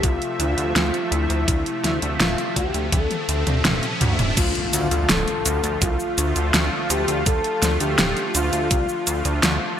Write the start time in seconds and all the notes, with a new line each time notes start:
Already playing: C3 F3 A3 E5, riser
0.03 C2 F4, kick, closed hi-hat
0.22 closed hi-hat
0.40 D2 F4, closed hi-hat
0.57 D2, closed hi-hat
0.76 D2, snare, closed hi-hat
0.94 closed hi-hat
1.12 D2 E4, closed hi-hat
1.30 D2, closed hi-hat
1.48 D2, kick, closed hi-hat
1.66 closed hi-hat
1.84 D2 E4, snare, closed hi-hat
2.02 D2, closed hi-hat
2.20 D1 F4, snare, closed hi-hat
2.38 closed hi-hat
2.56 D2 G4, kick, closed hi-hat
2.74 D2, closed hi-hat
2.92 D2 A4, kick, closed hi-hat, high tom
3.11 closed hi-hat, high tom
3.29 D2, closed hi-hat
3.47 D2, closed hi-hat, mid tom
3.65 D1, snare, closed hi-hat, mid tom
3.83 closed hi-hat
4.01 D2, closed hi-hat, mid tom
4.19 D1, closed hi-hat, mid tom
4.37 D2 D3 F3 A3 F4, kick, closed hi-hat, crash, impact, cabasa
4.55 closed hi-hat
4.73 D2, closed hi-hat, cabasa
4.91 D2, closed hi-hat, cabasa
5.09 D1 A4, snare, closed hi-hat, cabasa
5.28 closed hi-hat
5.46 D2, closed hi-hat, cabasa
5.63 D2, closed hi-hat, cabasa
5.82 C2 F4, kick, closed hi-hat, cabasa
6.00 cabasa
6.18 D2, closed hi-hat, cabasa
6.36 D2, closed hi-hat, cabasa
6.54 D2, snare, closed hi-hat, cabasa
6.90 D2 G4, closed hi-hat, cabasa
7.08 D2, closed hi-hat, cabasa
7.26 D2 A4, kick, closed hi-hat, cabasa
7.44 closed hi-hat
7.62 D2, snare, closed hi-hat, cabasa
7.80 D2 G4, closed hi-hat, cabasa
7.99 D1, snare, closed hi-hat, cabasa
8.17 closed hi-hat
8.35 D2 F4, closed hi-hat, cabasa
8.53 D2, closed hi-hat, cabasa
8.71 C2, kick, closed hi-hat, cabasa
8.89 cabasa
9.07 D2, closed hi-hat, cabasa
9.25 D2, closed hi-hat, cabasa
9.43 D2, snare, closed hi-hat, cabasa